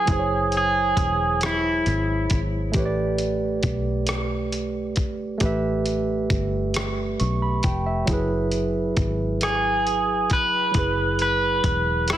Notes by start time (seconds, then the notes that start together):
Already playing: G#4
0.05 F#1 F#3 E4, kick, closed hi-hat
0.10 G#4 C5
0.19 C#5
0.52 closed hi-hat
0.57 G#4
0.97 E1, kick, closed hi-hat
1.41 cross-stick, closed hi-hat
1.46 E4
1.86 G#1, closed hi-hat
2.30 G#1, kick, closed hi-hat
2.72 A1 A3 G4, kick, closed hi-hat
2.77 B4 C#5
2.85 D5
3.18 closed hi-hat
3.63 B1, kick, closed hi-hat
4.07 cross-stick, closed hi-hat
4.52 closed hi-hat
4.96 G#1, kick, closed hi-hat
5.38 A1 A3 G4, kick, closed hi-hat
5.43 B4 E5
5.86 closed hi-hat
6.30 G1, kick, closed hi-hat
6.74 cross-stick, closed hi-hat
7.20 B1 C#6, closed hi-hat
7.42 B5
7.63 F1 G5, kick, closed hi-hat
7.86 E5
8.06 F#1 F#3 E4, kick, closed hi-hat
8.10 G#4 B4
8.52 closed hi-hat
8.97 G#1, kick, closed hi-hat
9.41 G#4, cross-stick, closed hi-hat
9.87 closed hi-hat
10.30 F1 B4, kick, closed hi-hat
10.71 F#1 F#3 E4, kick, closed hi-hat
10.77 G#4 B4
11.19 B4, closed hi-hat
11.64 E1, kick, closed hi-hat
12.08 cross-stick, closed hi-hat
12.13 F#4